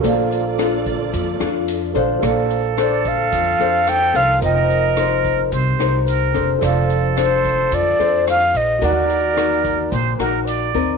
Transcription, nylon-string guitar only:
\new Staff \with { instrumentName = "Nylon-string guitar" } { \time 4/4 \key bes \major \tempo 4 = 109 << { <d' f' a'>4 <d' f' a'>4 r8 <d' f' a'>4 <d' a' c''>8~ | <d' a' c''>4 <d' a' c''>4. <d' a' c''>4 <ees' bes' c''>8~ | <ees' bes' c''>4 <ees' bes' c''>4. <ees' bes' c''>4 <d' a' c''>8~ | <d' a' c''>4 <d' a' c''>4. <d' a' c''>4. |
<ees' ges' bes'>4 <ees' ges' bes'>4 r8 <ees' ges' bes'>4 <c' ees' bes'>8 | } \\ { bes2 f2 | bes2 f2 | f2 c2 | f2 f2 |
ees2 bes,2 | } >> }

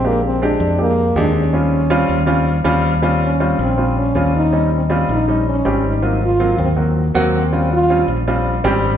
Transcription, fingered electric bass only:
\new Staff \with { instrumentName = "Fingered electric bass" } { \clef bass \time 4/4 \key ees \mixolydian \tempo 4 = 160 bes,,4. f,4. ees,4~ | ees,4. ees,4. ees,4~ | ees,4. bes,,4. ees,4~ | ees,4. bes,,4. aes,,4~ |
aes,,4. ees,4. ees,4~ | ees,4. bes,,4. aes,,4 | }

